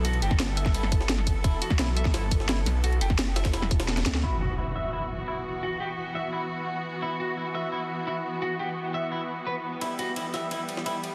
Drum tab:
RD |xxx-x-x-x-x-x-x-|x-x-x-x-x-x-x-x-|xxx-x-xxx-xx-xx-|----------------|
HH |x-x-x-x-x-x-x-x-|x-x-x-x-x-x-x-x-|x-x-x-x-x-x-x-x-|----------------|
SD |---oo--o-o-ooo--|---oo--oo--oo-o-|---oo-oooooooooo|----------------|
BD |---o---o--o---o-|o--o---o--o-----|---o---o--o---o-|----------------|

RD |----------------|----------------|----------------|x-x-x-x-x-x-x-x-|
HH |----------------|----------------|----------------|----------------|
SD |----------------|----------------|----------------|------o----o----|
BD |----------------|----------------|----------------|----------------|